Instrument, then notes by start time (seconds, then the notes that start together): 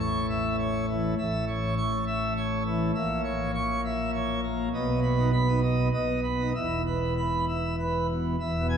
pipe organ
Already playing: A1 A2
0.00 C#6
0.29 E5
0.60 C#5
0.89 E3
1.18 A1 A2 E5
1.48 C#5
1.78 C#6
2.07 E5
2.37 C#5
2.66 E3
2.95 A#1 A#2 E5
3.24 C#5
3.54 C#6
3.85 E5
4.14 C#5
4.44 A#3
4.73 B1 B2 D#5
5.02 B4
5.18 D#4
5.33 B5
5.48 D#4
5.63 D#5
5.93 B1 B2 D#5
6.24 B4
6.40 D#4
6.55 E1 E2 E5
6.87 B4
7.18 B5
7.48 E5
7.79 B4
8.10 B2
8.40 E1 E2 E5
8.60 B2
8.70 G#5